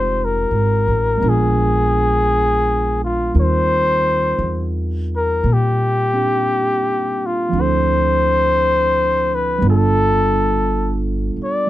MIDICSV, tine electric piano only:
0, 0, Header, 1, 2, 480
1, 0, Start_track
1, 0, Tempo, 1054482
1, 1521, Time_signature, 4, 2, 24, 8
1, 2479, Tempo, 1045296
1, 5349, End_track
2, 0, Start_track
2, 0, Title_t, "Tine electric piano"
2, 0, Program_c, 0, 4
2, 0, Control_c, 0, 64, 127
2, 0, Note_on_c, 0, 56, 41
2, 0, Note_on_c, 0, 60, 40
2, 0, Note_on_c, 0, 63, 39
2, 0, Note_on_c, 0, 65, 42
2, 0, Note_on_c, 0, 67, 42
2, 529, Note_off_c, 0, 56, 0
2, 534, Note_on_c, 0, 56, 45
2, 547, Note_on_c, 0, 59, 42
2, 557, Note_off_c, 0, 60, 0
2, 558, Note_off_c, 0, 63, 0
2, 558, Note_off_c, 0, 65, 0
2, 560, Note_off_c, 0, 67, 0
2, 561, Note_on_c, 0, 62, 43
2, 563, Control_c, 0, 64, 0
2, 574, Note_on_c, 0, 65, 43
2, 589, Note_on_c, 0, 70, 53
2, 642, Control_c, 0, 64, 127
2, 1510, Note_off_c, 0, 56, 0
2, 1516, Note_off_c, 0, 59, 0
2, 1520, Note_on_c, 0, 55, 38
2, 1523, Note_off_c, 0, 62, 0
2, 1523, Note_off_c, 0, 65, 0
2, 1523, Note_off_c, 0, 70, 0
2, 1524, Note_on_c, 0, 63, 38
2, 1525, Note_on_c, 0, 60, 36
2, 1528, Control_c, 0, 64, 0
2, 1528, Note_on_c, 0, 65, 38
2, 1528, Note_on_c, 0, 70, 46
2, 1599, Control_c, 0, 64, 127
2, 2791, Note_off_c, 0, 60, 0
2, 2796, Note_on_c, 0, 60, 38
2, 2803, Note_on_c, 0, 62, 32
2, 2811, Note_on_c, 0, 67, 39
2, 3418, Note_on_c, 0, 53, 44
2, 3426, Note_off_c, 0, 60, 0
2, 3432, Note_on_c, 0, 60, 38
2, 3439, Note_off_c, 0, 55, 0
2, 3439, Note_off_c, 0, 62, 0
2, 3440, Note_off_c, 0, 63, 0
2, 3442, Note_off_c, 0, 65, 0
2, 3442, Note_off_c, 0, 70, 0
2, 3444, Note_on_c, 0, 62, 37
2, 3445, Note_off_c, 0, 67, 0
2, 3445, Control_c, 0, 64, 0
2, 3459, Note_on_c, 0, 64, 35
2, 3470, Note_on_c, 0, 69, 44
2, 3512, Control_c, 0, 64, 127
2, 4380, Note_on_c, 0, 55, 53
2, 4389, Note_off_c, 0, 53, 0
2, 4392, Note_on_c, 0, 59, 46
2, 4396, Note_off_c, 0, 60, 0
2, 4402, Note_off_c, 0, 62, 0
2, 4406, Control_c, 0, 64, 0
2, 4407, Note_on_c, 0, 62, 48
2, 4410, Note_off_c, 0, 64, 0
2, 4415, Note_off_c, 0, 69, 0
2, 4420, Note_on_c, 0, 65, 49
2, 4431, Note_on_c, 0, 69, 63
2, 4489, Control_c, 0, 64, 127
2, 5332, Note_off_c, 0, 55, 0
2, 5349, Note_off_c, 0, 59, 0
2, 5349, Note_off_c, 0, 62, 0
2, 5349, Note_off_c, 0, 65, 0
2, 5349, Note_off_c, 0, 69, 0
2, 5349, End_track
0, 0, End_of_file